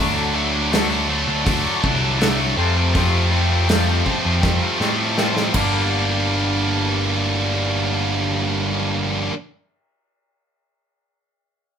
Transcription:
Already playing: D3 F#3
0.00 D2 A3 D4 F#4
0.34 D3 F#3 A3 D4
0.54 A3 D4 F#4
0.72 D3 F#3 A3 D4 F#4, snare, open hi-hat
0.90 A3 D4 F#4
1.09 D3 F#3 A3 D4, muted clean electric guitar stroke
1.27 D2 A3 D4 F#4
1.45 D2 D3 F#3 A3 D4, kick, open hi-hat
1.64 A3 D4 F#4
1.82 C2 D3 F#3 A3 D4, kick
1.86 F#4
2.19 D3 F#3 A3 D4 F#4, snare, open hi-hat
2.38 A3 D4 F#4
2.56 F2 C3 F3 A3 C4 F4
2.77 F3 A3 C4 F4
2.95 F2 C3 F3 A3 C4 F4, kick, open hi-hat
3.30 F2 C3 F3 A3 C4
3.51 F3 A3 C4 F4
3.69 F2 C3 F3 A3 C4 F4, snare, open hi-hat
3.88 F3 A3 C4 F4
4.05 F2 C3 F3 A3 C4, muted clean electric guitar stroke, kick
4.25 F2 F3 A3 C4 F4
4.41 F2 C3 F3 A3 C4, kick, snare
4.62 F3 A3 C4 F4
4.79 F2 A2 C3 F3 A3 C4, snare
4.84 F4
5.17 F2 C3 F3 A3 C4 F4, snare
5.36 F3 A3 C4 F4, snare
5.54 G1 G2 D3 G3 A#3 D4, kick, crash
5.58 G4

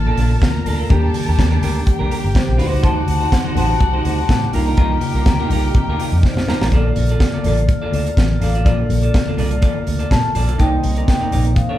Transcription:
Already playing: A1 A#2 D3 F3 A#3 D4 F4 A4 A#4 A5
0.07 A#3 D4 A4, muted conga
0.17 A#1 A#3 D4 A4, open hi-hat, high conga
0.30 muted clean electric guitar stroke
0.41 D2 A#4 A#5, muted clean electric guitar stroke, kick, snare, closed hi-hat, muted conga, high conga
0.53 muted clean electric guitar stroke, muted conga
0.66 D2 A#3 D4 A4, open hi-hat, low conga
0.78 A#3 D4 A4
0.89 D#2 D#3 G3 A#3 D4 G4 A4 A#4 D5 A5, kick, closed hi-hat, low conga
1.03 muted clean electric guitar stroke, muted conga
1.13 muted clean electric guitar stroke, open hi-hat, high conga
1.27 D#2 D4 G4 A#4
1.39 D#2, muted clean electric guitar stroke, kick, snare, closed hi-hat, muted conga, high conga
1.51 D4 G4 A#4, muted conga, high conga
1.62 D2 D4 G4 A#4, open hi-hat, high conga, low conga
1.77 muted clean electric guitar stroke
1.86 G4 G5, muted clean electric guitar stroke, kick, closed hi-hat
1.99 C2 D4 G4 A#4, muted conga
2.10 D4 G4 A#4, open hi-hat, high conga
2.23 G1, muted clean electric guitar stroke
2.35 C5, muted clean electric guitar stroke, kick, snare, closed hi-hat, muted conga, high conga
2.47 A#1, muted clean electric guitar stroke, muted conga
2.57 D2 D3 C4 D#4 F#4 C5 F#5, open hi-hat, low conga
2.72 C#2 D#4 F#4 C5
2.82 D2 D#4 F#4 C5 A5, kick, closed hi-hat, low conga
2.96 muted clean electric guitar stroke
3.07 D2, muted clean electric guitar stroke, open hi-hat, high conga
3.20 D#4 F#4 C5
3.32 F#5, muted clean electric guitar stroke, kick, snare, closed hi-hat, muted conga, high conga
3.44 D#4 F#4 C5, muted conga, high conga
3.55 A1 D#4 F#4 C5 A5, open hi-hat, high conga, low conga
3.70 muted clean electric guitar stroke
3.80 C2, muted clean electric guitar stroke, kick, closed hi-hat, muted conga
3.93 D#4 F#4 C5, muted conga
4.05 D2 D#4 F#4 C5, open hi-hat, high conga
4.20 muted clean electric guitar stroke
4.29 A2, muted clean electric guitar stroke, kick, snare, closed hi-hat, muted conga, high conga
4.42 muted clean electric guitar stroke
4.52 C2 C3 D#3 A#3 D4 D#4 F4 G4 A#4 G5, open hi-hat, low conga
4.67 D#4 F4 A#4
4.77 C2 D#4 F4 A#4 A#5, kick, closed hi-hat, low conga
4.92 muted clean electric guitar stroke
5.01 muted clean electric guitar stroke, open hi-hat, high conga
5.14 C2 D#4 F4 A#4
5.26 D2, muted clean electric guitar stroke, kick, snare, closed hi-hat, muted conga, high conga
5.40 D#4 F4 A#4
5.50 C2 D#4 F4 A#4, open hi-hat, high conga, low conga
5.66 muted clean electric guitar stroke
5.74 C3, muted clean electric guitar stroke, kick, closed hi-hat
5.88 D2 D#4 F4 A#4
6.00 D#4 F4 A#4, open hi-hat, high conga
6.12 F2, muted clean electric guitar stroke
6.17 D5
6.23 C5, muted clean electric guitar stroke, kick, snare, muted conga, high conga
6.35 C3, muted clean electric guitar stroke, snare, muted conga
6.47 D#4 F4 A#4, snare, low conga
6.61 A1 D#4 F4 A#4, snare
6.71 A#1 D3 A#3 D4 F4 G#4 A4 D5, kick, closed hi-hat, muted conga, low conga
6.79 A4
6.85 muted clean electric guitar stroke, muted conga
6.95 A#1, muted clean electric guitar stroke, open hi-hat, high conga
7.09 F4 A4 D5, closed hi-hat
7.20 D5, muted clean electric guitar stroke, kick, snare, closed hi-hat, high conga
7.34 F4 A4 D5, high conga
7.44 A1 F4 A4 D5, open hi-hat, high conga, low conga
7.57 muted clean electric guitar stroke, closed hi-hat
7.68 muted clean electric guitar stroke, kick, closed hi-hat, muted conga
7.82 F4 A4 D5, muted conga
7.92 D2 F4 A4 D5, open hi-hat, high conga
8.06 muted clean electric guitar stroke, closed hi-hat
8.17 A1, muted clean electric guitar stroke, kick, snare, closed hi-hat, muted conga, high conga
8.29 muted clean electric guitar stroke, muted conga
8.41 A1 F4 A4 D5 F5, open hi-hat, low conga
8.55 F4 A4 D5, closed hi-hat
8.65 A#1 A#2 A#3 D4 F4 A4 D5, kick, closed hi-hat, muted conga, low conga
8.79 muted clean electric guitar stroke
8.89 A#1, muted clean electric guitar stroke, open hi-hat, high conga
9.02 F4 A4 D5, closed hi-hat
9.14 muted clean electric guitar stroke, kick, snare, closed hi-hat, muted conga, high conga
9.27 F4 A4 D5, muted conga, high conga
9.37 C2 F4 A4 D5, open hi-hat, high conga, low conga
9.51 muted clean electric guitar stroke, closed hi-hat
9.62 F4 A4 D5, kick, closed hi-hat
9.75 muted clean electric guitar stroke, muted conga
9.87 D2, muted clean electric guitar stroke, open hi-hat, high conga
9.99 F4 A4 D5, closed hi-hat
10.11 A#2 A5, muted clean electric guitar stroke, kick, snare, closed hi-hat, muted conga, high conga
10.23 muted clean electric guitar stroke, muted conga
10.35 A#1 F4 A4 D5, open hi-hat, low conga
10.47 B1 F4 A4 D5, closed hi-hat
10.58 C2 C3 A#3 C4 D#4 A#4 D5 D#5 G5, kick, closed hi-hat, low conga
10.71 muted clean electric guitar stroke
10.83 C2, muted clean electric guitar stroke, open hi-hat, high conga
10.96 D#4 A#4 D5, closed hi-hat
11.07 G5, muted clean electric guitar stroke, kick, snare, closed hi-hat, high conga
11.21 D#4 A#4 D5, muted conga, high conga
11.31 A#1 D#4 A#4 D5, open hi-hat, high conga, low conga
11.45 muted clean electric guitar stroke, closed hi-hat
11.55 F5, muted clean electric guitar stroke, kick, closed hi-hat
11.69 D#4 A#4 D5, muted conga

